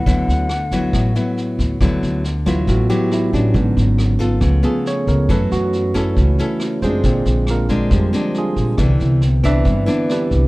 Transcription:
<<
  \new Staff \with { instrumentName = "Flute" } { \time 4/4 \key d \major \tempo 4 = 138 fis''2. r4 | r1 | r1 | r1 |
r1 | r1 | }
  \new Staff \with { instrumentName = "Tine electric piano" } { \time 4/4 \key d \major <a' b' e'' fis''>1 | r4. f'8 fis'8 g'8 e'8 cis'8~ | cis'8 r2 gis'8 cis''8 bes'8 | b'8 fis'8 r2 r8 <c' f' gis' c''>8~ |
<c' f' gis' c''>4 <bes d' f' bes'>4 <g g'>4 <aes d' f' aes'>8 r8 | r4. <c' e' b' e''>4. <d' g' b' d''>4 | }
  \new Staff \with { instrumentName = "Tine electric piano" } { \clef bass \time 4/4 \key d \major r1 | r4. <e fis b>2~ <e fis b>8 | <d fis b>2 <eis a b>2 | <e a cis'>4. r8 <e a cis'>8 r4. |
<d aes c'>8 r2. r8 | <d e b>8 r2. r8 | }
  \new Staff \with { instrumentName = "Nylon-string guitar" } { \time 4/4 \key d \major << { <fis b e'>4 r8 <fis b e'>4 <fis b e'>4. | <fis b e'>4 r8 <fis b e'>4 <fis b e'>4 <fis b d'>8~ | <fis b d'>4. <b f' a'>4 <b eis' a'>4. | <cis' e' a'>4. <cis' e' a'>4 <cis' e' a'>4 <gis c' d'>8~ |
<gis c' d'>4. <aes c' d'>4 <aes c' d'>4. | <e b d'>4 r8 <e b d'>4 <e b d'>4. | } \\ { d2 a,2 | d2 a,2 | gis,2 cis2 | fis2 cis2 |
bes,2 f2 | c2 g,2 | } >> }
  \new Staff \with { instrumentName = "Upright bass" } { \clef bass \time 4/4 \key d \major d,8 d,4. a,,8 r4 d,8 | d,8 d,4. a,,8 r4 a,,8 | gis,,8 gis,,4. cis,8 r4 cis,8 | fis,8 fis,4. cis,8 r4 fis,8 |
bes,,8 bes,,4. f,8 r4 bes,,8 | c,8 c,4. g,8 r4 c,8 | }
  \new DrumStaff \with { instrumentName = "Drums" } \drummode { \time 4/4 <bd sn>8 sn8 <ss sn>8 <bd sn>8 <bd ss sn>8 sn8 sn8 <bd sn>8 | <bd ss sn>8 sn8 sn8 <bd ss sn>8 <bd sn>8 sn8 <ss sn>8 <bd sn>8 | <bd sn>8 sn8 <ss sn>8 <bd sn>8 <bd ss sn>8 sn8 sn8 <bd sn>8 | <bd ss sn>8 sn8 sn8 <bd ss sn>8 <bd sn>8 sn8 <ss sn>8 <bd sn>8 |
<bd sn>8 sn8 <ss sn>8 <bd sn>8 <bd ss sn>8 sn8 sn8 <bd sn>8 | <bd ss sn>8 sn8 sn8 <bd ss sn>8 <bd sn>8 sn8 <ss sn>8 <bd sn>8 | }
>>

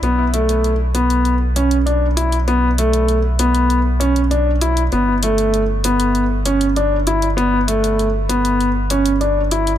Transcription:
<<
  \new Staff \with { instrumentName = "Grand piano" } { \time 4/4 \key b \minor \tempo 4 = 98 b8 a4 b4 cis'8 d'8 e'8 | b8 a4 b4 cis'8 d'8 e'8 | b8 a4 b4 cis'8 d'8 e'8 | b8 a4 b4 cis'8 d'8 e'8 | }
  \new Staff \with { instrumentName = "Analog synth bass" } { \clef bass \time 4/4 \key b \minor b,,1~ | b,,1 | g,,1~ | g,,1 | }
  \new DrumStaff \with { instrumentName = "Drums" } \drummode { \time 4/4 hh8 hh16 hh16 hh8 hh16 hh16 hh8 hh16 hh16 hh8 hh16 hh16 | hh8 hh16 hh16 hh8 hh16 hh16 hh8 hh16 hh16 hh8 hh16 hh16 | hh8 hh16 hh16 hh8 hh16 hh16 hh8 hh16 hh16 hh8 hh16 hh16 | hh8 hh16 hh16 hh8 hh16 hh16 hh8 hh16 hh16 hh8 hh16 hh16 | }
>>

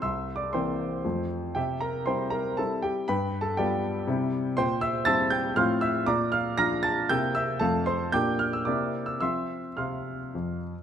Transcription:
<<
  \new Staff \with { instrumentName = "Grand piano" } { \time 3/4 \key f \major \tempo 4 = 118 \tuplet 3/2 { <e'' c''' e'''>4 <d'' d'''>8 } <c'' g'' c'''>4. r8 | <g' e'' g''>8 <bes' bes''>8 <c'' g'' c'''>8 <bes' bes''>8 <a' a''>8 <g' g''>8 | \tuplet 3/2 { <b' g'' b''>4 <a' a''>8 } <g' d'' g''>4. r8 | <c'' g'' c'''>8 <e'' e'''>8 <a'' e''' a'''>8 <g'' g'''>8 <f'' c''' f'''>8 <e'' e'''>8 |
<d'' bes'' d'''>8 <f'' f'''>8 <bes'' f''' bes'''>8 <a'' a'''>8 <g'' e''' g'''>8 <e'' e'''>8 | <a' f'' a''>8 <c'' c'''>8 <g'' d''' g'''>8 f'''16 e'''16 <d'' d'''>8. e'''16 | <e'' c''' e'''>4 <f'' c''' f'''>4. r8 | }
  \new Staff \with { instrumentName = "Grand piano" } { \time 3/4 \key f \major c,4 <e bes c'>4 <f, f a c'>4 | c4 <g c' e'>4 <g c' e'>4 | g,4 <g b f'>4 <c g c' e'>4 | bes,4 <g c' e'>4 <a, f c' f'>4 |
bes,4 <f d' f'>4 <c bes c' e'>4 | <f, a c' f'>4 <bes, bes d' g'>4 <c bes c' e'>4 | <f c' f'>4 c4 f,4 | }
>>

